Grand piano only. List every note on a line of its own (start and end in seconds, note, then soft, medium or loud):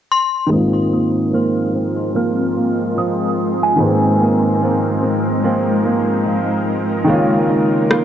0.47 3.73 D#3 medium
0.47 3.75 G#3 medium
0.51 3.76 A#3 medium
0.51 3.77 C4 medium
0.56 3.78 F4 medium
3.76 7.02 D#3 medium
3.76 7.03 G#3 medium
3.80 7.05 A#3 medium
3.80 3.89 B3 soft
3.85 7.07 G#4 medium
3.89 7.09 C4 medium
7.04 8.04 D#3 medium
7.04 8.04 G#3 medium
7.09 8.04 A#3 medium
7.09 8.04 C#4 medium
7.13 8.04 F4 medium